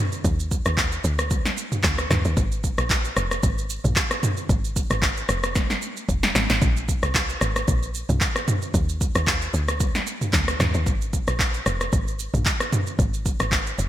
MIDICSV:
0, 0, Header, 1, 3, 480
1, 0, Start_track
1, 0, Tempo, 530973
1, 222, Time_signature, 4, 2, 24, 8
1, 12554, End_track
2, 0, Start_track
2, 0, Title_t, "Log drum bass"
2, 0, Program_c, 0, 39
2, 222, Note_on_c, 0, 39, 108
2, 543, Note_off_c, 0, 39, 0
2, 594, Note_on_c, 0, 39, 94
2, 895, Note_off_c, 0, 39, 0
2, 943, Note_on_c, 0, 38, 99
2, 1357, Note_off_c, 0, 38, 0
2, 1663, Note_on_c, 0, 38, 97
2, 1870, Note_off_c, 0, 38, 0
2, 1902, Note_on_c, 0, 39, 91
2, 2016, Note_off_c, 0, 39, 0
2, 2035, Note_on_c, 0, 39, 89
2, 2128, Note_off_c, 0, 39, 0
2, 2142, Note_on_c, 0, 32, 105
2, 2463, Note_off_c, 0, 32, 0
2, 2513, Note_on_c, 0, 34, 87
2, 2814, Note_off_c, 0, 34, 0
2, 2864, Note_on_c, 0, 29, 90
2, 3070, Note_off_c, 0, 29, 0
2, 3104, Note_on_c, 0, 32, 103
2, 3424, Note_off_c, 0, 32, 0
2, 3476, Note_on_c, 0, 34, 94
2, 3568, Note_off_c, 0, 34, 0
2, 4062, Note_on_c, 0, 32, 102
2, 4384, Note_off_c, 0, 32, 0
2, 4434, Note_on_c, 0, 32, 103
2, 4735, Note_off_c, 0, 32, 0
2, 4782, Note_on_c, 0, 29, 90
2, 5197, Note_off_c, 0, 29, 0
2, 5502, Note_on_c, 0, 29, 96
2, 5709, Note_off_c, 0, 29, 0
2, 5742, Note_on_c, 0, 32, 99
2, 5856, Note_off_c, 0, 32, 0
2, 5875, Note_on_c, 0, 32, 93
2, 5968, Note_off_c, 0, 32, 0
2, 5982, Note_on_c, 0, 34, 107
2, 6303, Note_off_c, 0, 34, 0
2, 6353, Note_on_c, 0, 36, 88
2, 6654, Note_off_c, 0, 36, 0
2, 6702, Note_on_c, 0, 32, 99
2, 6909, Note_off_c, 0, 32, 0
2, 6943, Note_on_c, 0, 34, 99
2, 7264, Note_off_c, 0, 34, 0
2, 7315, Note_on_c, 0, 36, 97
2, 7408, Note_off_c, 0, 36, 0
2, 7902, Note_on_c, 0, 39, 108
2, 8223, Note_off_c, 0, 39, 0
2, 8274, Note_on_c, 0, 39, 97
2, 8575, Note_off_c, 0, 39, 0
2, 8622, Note_on_c, 0, 38, 92
2, 9036, Note_off_c, 0, 38, 0
2, 9342, Note_on_c, 0, 38, 97
2, 9550, Note_off_c, 0, 38, 0
2, 9581, Note_on_c, 0, 39, 96
2, 9696, Note_off_c, 0, 39, 0
2, 9714, Note_on_c, 0, 39, 90
2, 9821, Note_on_c, 0, 32, 106
2, 9835, Note_off_c, 0, 39, 0
2, 10143, Note_off_c, 0, 32, 0
2, 10194, Note_on_c, 0, 34, 92
2, 10495, Note_off_c, 0, 34, 0
2, 10543, Note_on_c, 0, 29, 102
2, 10750, Note_off_c, 0, 29, 0
2, 10783, Note_on_c, 0, 32, 104
2, 11104, Note_off_c, 0, 32, 0
2, 11153, Note_on_c, 0, 34, 94
2, 11247, Note_off_c, 0, 34, 0
2, 11741, Note_on_c, 0, 32, 117
2, 12063, Note_off_c, 0, 32, 0
2, 12114, Note_on_c, 0, 32, 96
2, 12415, Note_off_c, 0, 32, 0
2, 12462, Note_on_c, 0, 29, 96
2, 12554, Note_off_c, 0, 29, 0
2, 12554, End_track
3, 0, Start_track
3, 0, Title_t, "Drums"
3, 111, Note_on_c, 9, 82, 57
3, 201, Note_off_c, 9, 82, 0
3, 222, Note_on_c, 9, 36, 119
3, 222, Note_on_c, 9, 82, 79
3, 312, Note_off_c, 9, 36, 0
3, 313, Note_off_c, 9, 82, 0
3, 357, Note_on_c, 9, 82, 59
3, 448, Note_off_c, 9, 82, 0
3, 465, Note_on_c, 9, 36, 92
3, 465, Note_on_c, 9, 82, 100
3, 555, Note_off_c, 9, 36, 0
3, 555, Note_off_c, 9, 82, 0
3, 591, Note_on_c, 9, 82, 58
3, 595, Note_on_c, 9, 37, 97
3, 681, Note_off_c, 9, 82, 0
3, 685, Note_off_c, 9, 37, 0
3, 699, Note_on_c, 9, 36, 89
3, 703, Note_on_c, 9, 39, 94
3, 704, Note_on_c, 9, 82, 62
3, 790, Note_off_c, 9, 36, 0
3, 793, Note_off_c, 9, 39, 0
3, 795, Note_off_c, 9, 82, 0
3, 833, Note_on_c, 9, 82, 53
3, 924, Note_off_c, 9, 82, 0
3, 942, Note_on_c, 9, 82, 97
3, 1032, Note_off_c, 9, 82, 0
3, 1074, Note_on_c, 9, 82, 60
3, 1075, Note_on_c, 9, 37, 100
3, 1164, Note_off_c, 9, 82, 0
3, 1165, Note_off_c, 9, 37, 0
3, 1181, Note_on_c, 9, 82, 94
3, 1183, Note_on_c, 9, 36, 114
3, 1271, Note_off_c, 9, 82, 0
3, 1273, Note_off_c, 9, 36, 0
3, 1315, Note_on_c, 9, 38, 66
3, 1316, Note_on_c, 9, 82, 52
3, 1405, Note_off_c, 9, 38, 0
3, 1407, Note_off_c, 9, 82, 0
3, 1422, Note_on_c, 9, 82, 94
3, 1512, Note_off_c, 9, 82, 0
3, 1554, Note_on_c, 9, 45, 66
3, 1557, Note_on_c, 9, 82, 62
3, 1645, Note_off_c, 9, 45, 0
3, 1647, Note_off_c, 9, 82, 0
3, 1659, Note_on_c, 9, 38, 59
3, 1659, Note_on_c, 9, 39, 88
3, 1663, Note_on_c, 9, 36, 96
3, 1666, Note_on_c, 9, 82, 71
3, 1749, Note_off_c, 9, 38, 0
3, 1749, Note_off_c, 9, 39, 0
3, 1753, Note_off_c, 9, 36, 0
3, 1756, Note_off_c, 9, 82, 0
3, 1794, Note_on_c, 9, 37, 95
3, 1795, Note_on_c, 9, 82, 57
3, 1885, Note_off_c, 9, 37, 0
3, 1885, Note_off_c, 9, 82, 0
3, 1904, Note_on_c, 9, 37, 90
3, 1904, Note_on_c, 9, 38, 65
3, 1904, Note_on_c, 9, 45, 104
3, 1905, Note_on_c, 9, 82, 102
3, 1994, Note_off_c, 9, 37, 0
3, 1994, Note_off_c, 9, 38, 0
3, 1995, Note_off_c, 9, 45, 0
3, 1996, Note_off_c, 9, 82, 0
3, 2031, Note_on_c, 9, 82, 55
3, 2122, Note_off_c, 9, 82, 0
3, 2142, Note_on_c, 9, 36, 127
3, 2143, Note_on_c, 9, 82, 76
3, 2232, Note_off_c, 9, 36, 0
3, 2233, Note_off_c, 9, 82, 0
3, 2277, Note_on_c, 9, 82, 58
3, 2367, Note_off_c, 9, 82, 0
3, 2385, Note_on_c, 9, 36, 91
3, 2385, Note_on_c, 9, 82, 96
3, 2475, Note_off_c, 9, 36, 0
3, 2475, Note_off_c, 9, 82, 0
3, 2512, Note_on_c, 9, 82, 59
3, 2515, Note_on_c, 9, 37, 102
3, 2602, Note_off_c, 9, 82, 0
3, 2606, Note_off_c, 9, 37, 0
3, 2620, Note_on_c, 9, 36, 87
3, 2623, Note_on_c, 9, 39, 92
3, 2625, Note_on_c, 9, 82, 64
3, 2710, Note_off_c, 9, 36, 0
3, 2714, Note_off_c, 9, 39, 0
3, 2715, Note_off_c, 9, 82, 0
3, 2754, Note_on_c, 9, 82, 51
3, 2844, Note_off_c, 9, 82, 0
3, 2862, Note_on_c, 9, 37, 103
3, 2863, Note_on_c, 9, 82, 95
3, 2952, Note_off_c, 9, 37, 0
3, 2953, Note_off_c, 9, 82, 0
3, 2994, Note_on_c, 9, 82, 60
3, 2995, Note_on_c, 9, 37, 98
3, 3085, Note_off_c, 9, 82, 0
3, 3086, Note_off_c, 9, 37, 0
3, 3101, Note_on_c, 9, 82, 91
3, 3103, Note_on_c, 9, 36, 122
3, 3192, Note_off_c, 9, 82, 0
3, 3194, Note_off_c, 9, 36, 0
3, 3237, Note_on_c, 9, 82, 54
3, 3328, Note_off_c, 9, 82, 0
3, 3342, Note_on_c, 9, 82, 98
3, 3433, Note_off_c, 9, 82, 0
3, 3474, Note_on_c, 9, 45, 64
3, 3476, Note_on_c, 9, 82, 60
3, 3565, Note_off_c, 9, 45, 0
3, 3567, Note_off_c, 9, 82, 0
3, 3579, Note_on_c, 9, 39, 84
3, 3583, Note_on_c, 9, 36, 92
3, 3586, Note_on_c, 9, 82, 74
3, 3669, Note_off_c, 9, 39, 0
3, 3673, Note_off_c, 9, 36, 0
3, 3676, Note_off_c, 9, 82, 0
3, 3715, Note_on_c, 9, 37, 102
3, 3715, Note_on_c, 9, 82, 58
3, 3805, Note_off_c, 9, 37, 0
3, 3805, Note_off_c, 9, 82, 0
3, 3825, Note_on_c, 9, 45, 98
3, 3826, Note_on_c, 9, 82, 101
3, 3915, Note_off_c, 9, 45, 0
3, 3916, Note_off_c, 9, 82, 0
3, 3952, Note_on_c, 9, 82, 54
3, 4042, Note_off_c, 9, 82, 0
3, 4063, Note_on_c, 9, 36, 125
3, 4064, Note_on_c, 9, 82, 79
3, 4153, Note_off_c, 9, 36, 0
3, 4154, Note_off_c, 9, 82, 0
3, 4199, Note_on_c, 9, 82, 61
3, 4289, Note_off_c, 9, 82, 0
3, 4305, Note_on_c, 9, 36, 91
3, 4305, Note_on_c, 9, 82, 100
3, 4396, Note_off_c, 9, 36, 0
3, 4396, Note_off_c, 9, 82, 0
3, 4432, Note_on_c, 9, 82, 59
3, 4436, Note_on_c, 9, 37, 94
3, 4523, Note_off_c, 9, 82, 0
3, 4526, Note_off_c, 9, 37, 0
3, 4539, Note_on_c, 9, 36, 94
3, 4543, Note_on_c, 9, 39, 94
3, 4545, Note_on_c, 9, 82, 61
3, 4630, Note_off_c, 9, 36, 0
3, 4634, Note_off_c, 9, 39, 0
3, 4635, Note_off_c, 9, 82, 0
3, 4673, Note_on_c, 9, 82, 52
3, 4763, Note_off_c, 9, 82, 0
3, 4781, Note_on_c, 9, 37, 101
3, 4782, Note_on_c, 9, 82, 94
3, 4871, Note_off_c, 9, 37, 0
3, 4872, Note_off_c, 9, 82, 0
3, 4913, Note_on_c, 9, 82, 62
3, 4914, Note_on_c, 9, 37, 99
3, 5004, Note_off_c, 9, 82, 0
3, 5005, Note_off_c, 9, 37, 0
3, 5020, Note_on_c, 9, 82, 90
3, 5021, Note_on_c, 9, 38, 64
3, 5023, Note_on_c, 9, 36, 117
3, 5110, Note_off_c, 9, 82, 0
3, 5111, Note_off_c, 9, 38, 0
3, 5113, Note_off_c, 9, 36, 0
3, 5154, Note_on_c, 9, 38, 58
3, 5156, Note_on_c, 9, 82, 51
3, 5244, Note_off_c, 9, 38, 0
3, 5247, Note_off_c, 9, 82, 0
3, 5261, Note_on_c, 9, 82, 94
3, 5352, Note_off_c, 9, 82, 0
3, 5396, Note_on_c, 9, 82, 60
3, 5486, Note_off_c, 9, 82, 0
3, 5502, Note_on_c, 9, 36, 92
3, 5506, Note_on_c, 9, 82, 74
3, 5593, Note_off_c, 9, 36, 0
3, 5596, Note_off_c, 9, 82, 0
3, 5634, Note_on_c, 9, 38, 84
3, 5635, Note_on_c, 9, 82, 56
3, 5725, Note_off_c, 9, 38, 0
3, 5725, Note_off_c, 9, 82, 0
3, 5742, Note_on_c, 9, 38, 112
3, 5745, Note_on_c, 9, 82, 99
3, 5832, Note_off_c, 9, 38, 0
3, 5835, Note_off_c, 9, 82, 0
3, 5871, Note_on_c, 9, 82, 57
3, 5874, Note_on_c, 9, 38, 100
3, 5962, Note_off_c, 9, 82, 0
3, 5965, Note_off_c, 9, 38, 0
3, 5982, Note_on_c, 9, 36, 126
3, 5982, Note_on_c, 9, 82, 75
3, 6072, Note_off_c, 9, 36, 0
3, 6073, Note_off_c, 9, 82, 0
3, 6117, Note_on_c, 9, 82, 60
3, 6208, Note_off_c, 9, 82, 0
3, 6224, Note_on_c, 9, 36, 92
3, 6225, Note_on_c, 9, 82, 96
3, 6315, Note_off_c, 9, 36, 0
3, 6315, Note_off_c, 9, 82, 0
3, 6351, Note_on_c, 9, 82, 58
3, 6355, Note_on_c, 9, 37, 98
3, 6441, Note_off_c, 9, 82, 0
3, 6445, Note_off_c, 9, 37, 0
3, 6459, Note_on_c, 9, 36, 91
3, 6463, Note_on_c, 9, 39, 94
3, 6464, Note_on_c, 9, 82, 63
3, 6549, Note_off_c, 9, 36, 0
3, 6553, Note_off_c, 9, 39, 0
3, 6555, Note_off_c, 9, 82, 0
3, 6592, Note_on_c, 9, 82, 53
3, 6683, Note_off_c, 9, 82, 0
3, 6701, Note_on_c, 9, 37, 97
3, 6702, Note_on_c, 9, 82, 93
3, 6791, Note_off_c, 9, 37, 0
3, 6792, Note_off_c, 9, 82, 0
3, 6834, Note_on_c, 9, 82, 62
3, 6835, Note_on_c, 9, 37, 99
3, 6925, Note_off_c, 9, 82, 0
3, 6926, Note_off_c, 9, 37, 0
3, 6941, Note_on_c, 9, 82, 92
3, 6943, Note_on_c, 9, 36, 117
3, 7031, Note_off_c, 9, 82, 0
3, 7033, Note_off_c, 9, 36, 0
3, 7077, Note_on_c, 9, 82, 54
3, 7167, Note_off_c, 9, 82, 0
3, 7182, Note_on_c, 9, 82, 99
3, 7273, Note_off_c, 9, 82, 0
3, 7314, Note_on_c, 9, 45, 66
3, 7316, Note_on_c, 9, 82, 60
3, 7405, Note_off_c, 9, 45, 0
3, 7407, Note_off_c, 9, 82, 0
3, 7419, Note_on_c, 9, 39, 82
3, 7423, Note_on_c, 9, 36, 90
3, 7426, Note_on_c, 9, 82, 73
3, 7510, Note_off_c, 9, 39, 0
3, 7513, Note_off_c, 9, 36, 0
3, 7517, Note_off_c, 9, 82, 0
3, 7555, Note_on_c, 9, 37, 98
3, 7555, Note_on_c, 9, 82, 55
3, 7645, Note_off_c, 9, 37, 0
3, 7645, Note_off_c, 9, 82, 0
3, 7665, Note_on_c, 9, 45, 101
3, 7666, Note_on_c, 9, 82, 102
3, 7755, Note_off_c, 9, 45, 0
3, 7756, Note_off_c, 9, 82, 0
3, 7792, Note_on_c, 9, 82, 55
3, 7882, Note_off_c, 9, 82, 0
3, 7902, Note_on_c, 9, 36, 121
3, 7904, Note_on_c, 9, 82, 80
3, 7992, Note_off_c, 9, 36, 0
3, 7994, Note_off_c, 9, 82, 0
3, 8038, Note_on_c, 9, 82, 61
3, 8128, Note_off_c, 9, 82, 0
3, 8145, Note_on_c, 9, 36, 97
3, 8145, Note_on_c, 9, 82, 99
3, 8235, Note_off_c, 9, 36, 0
3, 8235, Note_off_c, 9, 82, 0
3, 8272, Note_on_c, 9, 82, 61
3, 8276, Note_on_c, 9, 37, 97
3, 8362, Note_off_c, 9, 82, 0
3, 8366, Note_off_c, 9, 37, 0
3, 8379, Note_on_c, 9, 36, 88
3, 8384, Note_on_c, 9, 39, 93
3, 8385, Note_on_c, 9, 82, 62
3, 8470, Note_off_c, 9, 36, 0
3, 8474, Note_off_c, 9, 39, 0
3, 8476, Note_off_c, 9, 82, 0
3, 8513, Note_on_c, 9, 82, 53
3, 8604, Note_off_c, 9, 82, 0
3, 8622, Note_on_c, 9, 82, 92
3, 8712, Note_off_c, 9, 82, 0
3, 8754, Note_on_c, 9, 82, 60
3, 8755, Note_on_c, 9, 37, 96
3, 8844, Note_off_c, 9, 82, 0
3, 8845, Note_off_c, 9, 37, 0
3, 8861, Note_on_c, 9, 82, 90
3, 8863, Note_on_c, 9, 36, 120
3, 8951, Note_off_c, 9, 82, 0
3, 8953, Note_off_c, 9, 36, 0
3, 8995, Note_on_c, 9, 38, 62
3, 8997, Note_on_c, 9, 82, 54
3, 9086, Note_off_c, 9, 38, 0
3, 9087, Note_off_c, 9, 82, 0
3, 9102, Note_on_c, 9, 82, 100
3, 9192, Note_off_c, 9, 82, 0
3, 9234, Note_on_c, 9, 45, 65
3, 9236, Note_on_c, 9, 82, 59
3, 9324, Note_off_c, 9, 45, 0
3, 9326, Note_off_c, 9, 82, 0
3, 9339, Note_on_c, 9, 38, 63
3, 9339, Note_on_c, 9, 39, 88
3, 9342, Note_on_c, 9, 36, 90
3, 9346, Note_on_c, 9, 82, 73
3, 9429, Note_off_c, 9, 38, 0
3, 9429, Note_off_c, 9, 39, 0
3, 9433, Note_off_c, 9, 36, 0
3, 9437, Note_off_c, 9, 82, 0
3, 9474, Note_on_c, 9, 37, 101
3, 9475, Note_on_c, 9, 82, 56
3, 9565, Note_off_c, 9, 37, 0
3, 9565, Note_off_c, 9, 82, 0
3, 9583, Note_on_c, 9, 37, 90
3, 9583, Note_on_c, 9, 38, 67
3, 9583, Note_on_c, 9, 45, 103
3, 9584, Note_on_c, 9, 82, 99
3, 9673, Note_off_c, 9, 37, 0
3, 9673, Note_off_c, 9, 38, 0
3, 9674, Note_off_c, 9, 45, 0
3, 9675, Note_off_c, 9, 82, 0
3, 9711, Note_on_c, 9, 82, 56
3, 9801, Note_off_c, 9, 82, 0
3, 9821, Note_on_c, 9, 36, 127
3, 9822, Note_on_c, 9, 82, 77
3, 9912, Note_off_c, 9, 36, 0
3, 9912, Note_off_c, 9, 82, 0
3, 9957, Note_on_c, 9, 82, 60
3, 10047, Note_off_c, 9, 82, 0
3, 10064, Note_on_c, 9, 36, 93
3, 10064, Note_on_c, 9, 82, 96
3, 10155, Note_off_c, 9, 36, 0
3, 10155, Note_off_c, 9, 82, 0
3, 10192, Note_on_c, 9, 82, 62
3, 10195, Note_on_c, 9, 37, 94
3, 10282, Note_off_c, 9, 82, 0
3, 10286, Note_off_c, 9, 37, 0
3, 10299, Note_on_c, 9, 36, 90
3, 10303, Note_on_c, 9, 39, 95
3, 10305, Note_on_c, 9, 82, 61
3, 10389, Note_off_c, 9, 36, 0
3, 10394, Note_off_c, 9, 39, 0
3, 10395, Note_off_c, 9, 82, 0
3, 10433, Note_on_c, 9, 82, 50
3, 10523, Note_off_c, 9, 82, 0
3, 10541, Note_on_c, 9, 37, 100
3, 10542, Note_on_c, 9, 82, 92
3, 10632, Note_off_c, 9, 37, 0
3, 10633, Note_off_c, 9, 82, 0
3, 10675, Note_on_c, 9, 82, 59
3, 10676, Note_on_c, 9, 37, 95
3, 10765, Note_off_c, 9, 82, 0
3, 10766, Note_off_c, 9, 37, 0
3, 10781, Note_on_c, 9, 82, 93
3, 10783, Note_on_c, 9, 36, 121
3, 10871, Note_off_c, 9, 82, 0
3, 10873, Note_off_c, 9, 36, 0
3, 10917, Note_on_c, 9, 82, 54
3, 11007, Note_off_c, 9, 82, 0
3, 11022, Note_on_c, 9, 82, 101
3, 11113, Note_off_c, 9, 82, 0
3, 11154, Note_on_c, 9, 45, 68
3, 11156, Note_on_c, 9, 82, 60
3, 11244, Note_off_c, 9, 45, 0
3, 11246, Note_off_c, 9, 82, 0
3, 11259, Note_on_c, 9, 39, 85
3, 11262, Note_on_c, 9, 36, 92
3, 11266, Note_on_c, 9, 82, 76
3, 11350, Note_off_c, 9, 39, 0
3, 11353, Note_off_c, 9, 36, 0
3, 11357, Note_off_c, 9, 82, 0
3, 11394, Note_on_c, 9, 37, 101
3, 11395, Note_on_c, 9, 82, 57
3, 11485, Note_off_c, 9, 37, 0
3, 11485, Note_off_c, 9, 82, 0
3, 11504, Note_on_c, 9, 45, 99
3, 11505, Note_on_c, 9, 82, 103
3, 11595, Note_off_c, 9, 45, 0
3, 11596, Note_off_c, 9, 82, 0
3, 11632, Note_on_c, 9, 82, 56
3, 11722, Note_off_c, 9, 82, 0
3, 11742, Note_on_c, 9, 36, 127
3, 11743, Note_on_c, 9, 82, 74
3, 11832, Note_off_c, 9, 36, 0
3, 11833, Note_off_c, 9, 82, 0
3, 11877, Note_on_c, 9, 82, 60
3, 11968, Note_off_c, 9, 82, 0
3, 11984, Note_on_c, 9, 36, 92
3, 11984, Note_on_c, 9, 82, 91
3, 12074, Note_off_c, 9, 82, 0
3, 12075, Note_off_c, 9, 36, 0
3, 12111, Note_on_c, 9, 82, 57
3, 12114, Note_on_c, 9, 37, 98
3, 12201, Note_off_c, 9, 82, 0
3, 12205, Note_off_c, 9, 37, 0
3, 12218, Note_on_c, 9, 36, 93
3, 12222, Note_on_c, 9, 39, 95
3, 12224, Note_on_c, 9, 82, 61
3, 12309, Note_off_c, 9, 36, 0
3, 12312, Note_off_c, 9, 39, 0
3, 12314, Note_off_c, 9, 82, 0
3, 12352, Note_on_c, 9, 82, 52
3, 12443, Note_off_c, 9, 82, 0
3, 12462, Note_on_c, 9, 82, 94
3, 12552, Note_off_c, 9, 82, 0
3, 12554, End_track
0, 0, End_of_file